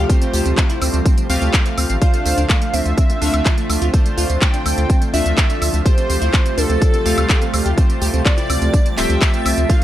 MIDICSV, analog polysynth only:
0, 0, Header, 1, 2, 480
1, 0, Start_track
1, 0, Tempo, 480000
1, 96, Time_signature, 4, 2, 24, 8
1, 9839, End_track
2, 0, Start_track
2, 0, Title_t, "Analog polysynth"
2, 0, Program_c, 0, 90
2, 96, Note_on_c, 0, 57, 88
2, 96, Note_on_c, 0, 65, 78
2, 96, Note_on_c, 0, 67, 81
2, 96, Note_on_c, 0, 72, 98
2, 1267, Note_off_c, 0, 57, 0
2, 1267, Note_off_c, 0, 65, 0
2, 1267, Note_off_c, 0, 67, 0
2, 1267, Note_off_c, 0, 72, 0
2, 1296, Note_on_c, 0, 57, 98
2, 1296, Note_on_c, 0, 65, 88
2, 1296, Note_on_c, 0, 67, 90
2, 1296, Note_on_c, 0, 77, 108
2, 1987, Note_off_c, 0, 57, 0
2, 1987, Note_off_c, 0, 65, 0
2, 1987, Note_off_c, 0, 67, 0
2, 1987, Note_off_c, 0, 77, 0
2, 2016, Note_on_c, 0, 57, 84
2, 2016, Note_on_c, 0, 62, 81
2, 2016, Note_on_c, 0, 65, 79
2, 2016, Note_on_c, 0, 72, 98
2, 3187, Note_off_c, 0, 57, 0
2, 3187, Note_off_c, 0, 62, 0
2, 3187, Note_off_c, 0, 65, 0
2, 3187, Note_off_c, 0, 72, 0
2, 3216, Note_on_c, 0, 57, 95
2, 3216, Note_on_c, 0, 62, 90
2, 3216, Note_on_c, 0, 65, 89
2, 3216, Note_on_c, 0, 76, 104
2, 3907, Note_off_c, 0, 57, 0
2, 3907, Note_off_c, 0, 62, 0
2, 3907, Note_off_c, 0, 65, 0
2, 3907, Note_off_c, 0, 76, 0
2, 3936, Note_on_c, 0, 57, 86
2, 3936, Note_on_c, 0, 62, 78
2, 3936, Note_on_c, 0, 65, 79
2, 3936, Note_on_c, 0, 72, 96
2, 5107, Note_off_c, 0, 65, 0
2, 5108, Note_off_c, 0, 57, 0
2, 5108, Note_off_c, 0, 62, 0
2, 5108, Note_off_c, 0, 72, 0
2, 5136, Note_on_c, 0, 57, 97
2, 5136, Note_on_c, 0, 62, 87
2, 5136, Note_on_c, 0, 65, 88
2, 5136, Note_on_c, 0, 76, 107
2, 5828, Note_off_c, 0, 57, 0
2, 5828, Note_off_c, 0, 62, 0
2, 5828, Note_off_c, 0, 65, 0
2, 5828, Note_off_c, 0, 76, 0
2, 5856, Note_on_c, 0, 57, 86
2, 5856, Note_on_c, 0, 65, 82
2, 5856, Note_on_c, 0, 67, 82
2, 5857, Note_on_c, 0, 72, 94
2, 7028, Note_off_c, 0, 57, 0
2, 7028, Note_off_c, 0, 65, 0
2, 7028, Note_off_c, 0, 67, 0
2, 7028, Note_off_c, 0, 72, 0
2, 7056, Note_on_c, 0, 57, 96
2, 7056, Note_on_c, 0, 65, 91
2, 7056, Note_on_c, 0, 67, 91
2, 7056, Note_on_c, 0, 77, 107
2, 7747, Note_off_c, 0, 57, 0
2, 7747, Note_off_c, 0, 65, 0
2, 7747, Note_off_c, 0, 67, 0
2, 7747, Note_off_c, 0, 77, 0
2, 7776, Note_on_c, 0, 57, 89
2, 7776, Note_on_c, 0, 65, 80
2, 7776, Note_on_c, 0, 67, 80
2, 7776, Note_on_c, 0, 72, 93
2, 8947, Note_off_c, 0, 57, 0
2, 8947, Note_off_c, 0, 65, 0
2, 8947, Note_off_c, 0, 67, 0
2, 8947, Note_off_c, 0, 72, 0
2, 8975, Note_on_c, 0, 67, 88
2, 8976, Note_on_c, 0, 57, 98
2, 8976, Note_on_c, 0, 65, 89
2, 8976, Note_on_c, 0, 79, 111
2, 9667, Note_off_c, 0, 57, 0
2, 9667, Note_off_c, 0, 65, 0
2, 9667, Note_off_c, 0, 67, 0
2, 9667, Note_off_c, 0, 79, 0
2, 9696, Note_on_c, 0, 57, 86
2, 9696, Note_on_c, 0, 62, 81
2, 9696, Note_on_c, 0, 65, 82
2, 9696, Note_on_c, 0, 72, 96
2, 9839, Note_off_c, 0, 57, 0
2, 9839, Note_off_c, 0, 62, 0
2, 9839, Note_off_c, 0, 65, 0
2, 9839, Note_off_c, 0, 72, 0
2, 9839, End_track
0, 0, End_of_file